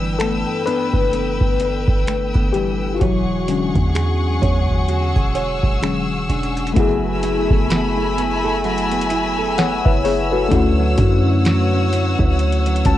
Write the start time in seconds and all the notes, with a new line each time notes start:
Already playing: G1 G2 E3 A3 B3 D4 B4 G5 E6
0.19 A3 B3 A4, finger snap, closed hi-hat
0.66 B3 D4 B4, closed hi-hat
0.94 F#1, kick
1.13 B3, closed hi-hat
1.41 G1, kick
1.60 D4, closed hi-hat
1.88 G1, kick
2.07 A3, finger snap, closed hi-hat
2.34 G1 B3, kick
2.53 E3 G3 G4, closed hi-hat
2.94 F4
3.00 E1 E3 F#3 F#4 G#4 C#5 F#5 C#6, kick, closed hi-hat
3.48 D3 F#3 G#3 C#4 D4, closed hi-hat
3.75 E2, kick, closed hi-hat
3.95 G#4, finger snap, closed hi-hat
4.42 E2 C#5, kick, closed hi-hat
4.69 kick
4.88 F#4 E6, closed hi-hat
5.16 E1 G#4, kick
5.35 C#5, closed hi-hat
5.63 E1, kick
5.82 D3 F#3 G#3 C#4 G#4, finger snap, closed hi-hat
6.29 E1 D4, closed hi-hat
6.43 closed hi-hat
6.57 closed hi-hat
6.67 closed hi-hat
6.74 F#1 F#3 A3 B3 E4 G#5 B5 E6, kick, closed hi-hat
6.80 G#4
7.04 B3
7.23 E4, closed hi-hat
7.50 F#1 A4, kick
7.70 B3 B5, snare, closed hi-hat
7.97 E4
8.17 B3, closed hi-hat
8.44 A4
8.64 F#3, closed hi-hat
8.78 closed hi-hat
8.91 B3, closed hi-hat
9.01 closed hi-hat
9.10 E4, closed hi-hat
9.38 A4
9.58 B3 C#5 F#5, snare, closed hi-hat
9.85 F#1 E4 B4 E5, kick
10.05 B3 G#4 C#5, open hi-hat
10.32 F#4 A4 B4
10.49 D2 D3 A3 C#4 E4 C#5 F#5, kick, closed hi-hat
10.54 F#4
10.79 F#3
10.98 F#2 C#4, kick, closed hi-hat
11.26 E4
11.45 F#3, snare, closed hi-hat
11.73 C#4
11.92 F#3, closed hi-hat
12.19 D2 E4, kick
12.39 closed hi-hat
12.52 closed hi-hat
12.66 F#3, closed hi-hat
12.76 closed hi-hat
12.85 C#2 C#4 A5, kick, closed hi-hat